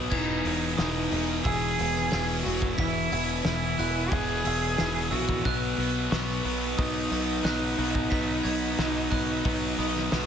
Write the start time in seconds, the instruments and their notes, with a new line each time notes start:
Already playing: distorted electric guitar B3, ambient pad B4, glockenspiel D#6
0.10 fingered electric bass E1, distorted electric guitar E2 B2 E3, cello D#4, ambient pad G#5, glockenspiel G#6, kick, crash
0.45 fingered electric bass E1, distorted electric guitar E2 B2 E3, open hi-hat
0.77 fingered electric bass E1, distorted electric guitar E2 B2 E3, cello D#4, glockenspiel D#6, snare, open hi-hat
1.11 fingered electric bass E1, distorted electric guitar E2 B2 E3, open hi-hat
1.44 fingered electric bass E1, distorted electric guitar E2 B2 E3, cello G#4, glockenspiel E6, kick, open hi-hat
1.77 fingered electric bass E1, distorted electric guitar E2 B2 E3, open hi-hat
1.95 snare
2.11 fingered electric bass E1, distorted electric guitar E2 B2 E3, glockenspiel G#6, snare, open hi-hat
2.42 fingered electric bass E1, distorted electric guitar E2 B2 E3, cello F#4, open hi-hat
2.62 kick
2.76 fingered electric bass E1, distorted electric guitar E2 B2 E3, cello E4, glockenspiel B6, kick, open hi-hat
3.11 fingered electric bass E1, distorted electric guitar E2 B2 E3, glockenspiel G#6, open hi-hat
3.44 fingered electric bass E1, distorted electric guitar E2 B2 E3, cello E4, snare, open hi-hat
3.77 fingered electric bass E1, distorted electric guitar E2 B2 E3, glockenspiel F#6, open hi-hat
4.10 fingered electric bass E1, distorted electric guitar E2 B2 E3, cello G#4, kick, open hi-hat
4.44 fingered electric bass E1, distorted electric guitar E2 B2 E3, glockenspiel E6, open hi-hat
4.77 fingered electric bass E1, distorted electric guitar E2 B2 E3, snare, open hi-hat
5.10 fingered electric bass A#1, distorted electric guitar E2 B2 E3, cello F#4, glockenspiel E6, open hi-hat
5.29 kick
5.43 fingered electric bass B1, distorted electric guitar B2 F#3 B3, cello B3, ambient pad D#5 F#5, glockenspiel F#6, kick, open hi-hat
5.77 fingered electric bass B1, distorted electric guitar B2 F#3 B3, open hi-hat
6.11 fingered electric bass B1, distorted electric guitar B2 F#3 B3, cello B3, glockenspiel C#6, snare, open hi-hat
6.44 fingered electric bass B1, distorted electric guitar B2 F#3 B3, open hi-hat
6.77 fingered electric bass B1, distorted electric guitar B2 F#3 B3, cello D#4, glockenspiel D#6, kick, open hi-hat
7.10 fingered electric bass B1, distorted electric guitar B2 F#3 B3, open hi-hat
7.43 fingered electric bass B1, distorted electric guitar B2 F#3 B3, glockenspiel F#6, snare, open hi-hat
7.77 fingered electric bass B1, distorted electric guitar B2 F#3 B3, open hi-hat
7.95 kick
8.10 fingered electric bass B1, distorted electric guitar B2 F#3 B3, ambient pad C#6, glockenspiel B6, kick, open hi-hat
8.43 fingered electric bass B1, distorted electric guitar B2 F#3 B3, glockenspiel G#6, open hi-hat
8.78 fingered electric bass B1, distorted electric guitar B2 F#3 B3, snare, open hi-hat
9.11 fingered electric bass B1, distorted electric guitar B2 F#3 B3, glockenspiel F#6, kick, open hi-hat
9.45 fingered electric bass B1, distorted electric guitar B2 F#3 B3, kick, open hi-hat
9.77 fingered electric bass B1, distorted electric guitar B2 F#3 B3, glockenspiel D#6, open hi-hat
9.96 snare
10.12 fingered electric bass B1, distorted electric guitar B2 F#3 B3, cello A3, snare, open hi-hat